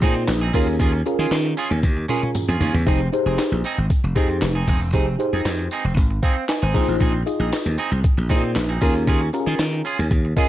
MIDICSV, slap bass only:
0, 0, Header, 1, 2, 480
1, 0, Start_track
1, 0, Key_signature, -4, "minor"
1, 0, Tempo, 517241
1, 741, Time_signature, 4, 2, 24, 8
1, 9730, End_track
2, 0, Start_track
2, 0, Title_t, "Slap bass"
2, 0, Program_c, 0, 36
2, 20, Note_on_c, 0, 46, 91
2, 260, Note_on_c, 0, 34, 95
2, 274, Note_off_c, 0, 46, 0
2, 462, Note_off_c, 0, 34, 0
2, 501, Note_on_c, 0, 39, 106
2, 703, Note_off_c, 0, 39, 0
2, 739, Note_on_c, 0, 39, 96
2, 942, Note_off_c, 0, 39, 0
2, 1104, Note_on_c, 0, 51, 105
2, 1200, Note_off_c, 0, 51, 0
2, 1218, Note_on_c, 0, 51, 101
2, 1421, Note_off_c, 0, 51, 0
2, 1585, Note_on_c, 0, 39, 83
2, 1681, Note_off_c, 0, 39, 0
2, 1700, Note_on_c, 0, 39, 100
2, 1902, Note_off_c, 0, 39, 0
2, 2305, Note_on_c, 0, 41, 89
2, 2401, Note_off_c, 0, 41, 0
2, 2415, Note_on_c, 0, 39, 93
2, 2525, Note_off_c, 0, 39, 0
2, 2544, Note_on_c, 0, 40, 89
2, 2640, Note_off_c, 0, 40, 0
2, 2661, Note_on_c, 0, 29, 95
2, 2863, Note_off_c, 0, 29, 0
2, 3023, Note_on_c, 0, 29, 100
2, 3120, Note_off_c, 0, 29, 0
2, 3264, Note_on_c, 0, 34, 85
2, 3361, Note_off_c, 0, 34, 0
2, 3507, Note_on_c, 0, 32, 88
2, 3602, Note_off_c, 0, 32, 0
2, 3746, Note_on_c, 0, 29, 95
2, 3841, Note_off_c, 0, 29, 0
2, 3860, Note_on_c, 0, 41, 90
2, 4098, Note_on_c, 0, 29, 83
2, 4112, Note_off_c, 0, 41, 0
2, 4301, Note_off_c, 0, 29, 0
2, 4342, Note_on_c, 0, 28, 81
2, 4543, Note_off_c, 0, 28, 0
2, 4579, Note_on_c, 0, 29, 112
2, 4782, Note_off_c, 0, 29, 0
2, 4947, Note_on_c, 0, 41, 93
2, 5042, Note_off_c, 0, 41, 0
2, 5060, Note_on_c, 0, 41, 109
2, 5262, Note_off_c, 0, 41, 0
2, 5424, Note_on_c, 0, 29, 82
2, 5521, Note_off_c, 0, 29, 0
2, 5542, Note_on_c, 0, 32, 96
2, 5744, Note_off_c, 0, 32, 0
2, 6147, Note_on_c, 0, 32, 82
2, 6242, Note_off_c, 0, 32, 0
2, 6263, Note_on_c, 0, 34, 87
2, 6369, Note_off_c, 0, 34, 0
2, 6387, Note_on_c, 0, 33, 93
2, 6482, Note_off_c, 0, 33, 0
2, 6501, Note_on_c, 0, 34, 98
2, 6703, Note_off_c, 0, 34, 0
2, 6863, Note_on_c, 0, 34, 103
2, 6960, Note_off_c, 0, 34, 0
2, 7106, Note_on_c, 0, 39, 82
2, 7201, Note_off_c, 0, 39, 0
2, 7346, Note_on_c, 0, 36, 92
2, 7442, Note_off_c, 0, 36, 0
2, 7587, Note_on_c, 0, 34, 88
2, 7701, Note_on_c, 0, 46, 88
2, 7715, Note_off_c, 0, 34, 0
2, 7941, Note_on_c, 0, 34, 88
2, 7955, Note_off_c, 0, 46, 0
2, 8143, Note_off_c, 0, 34, 0
2, 8180, Note_on_c, 0, 39, 101
2, 8382, Note_off_c, 0, 39, 0
2, 8420, Note_on_c, 0, 39, 90
2, 8623, Note_off_c, 0, 39, 0
2, 8787, Note_on_c, 0, 51, 97
2, 8882, Note_off_c, 0, 51, 0
2, 8901, Note_on_c, 0, 51, 104
2, 9103, Note_off_c, 0, 51, 0
2, 9271, Note_on_c, 0, 39, 82
2, 9364, Note_off_c, 0, 39, 0
2, 9382, Note_on_c, 0, 39, 96
2, 9583, Note_off_c, 0, 39, 0
2, 9730, End_track
0, 0, End_of_file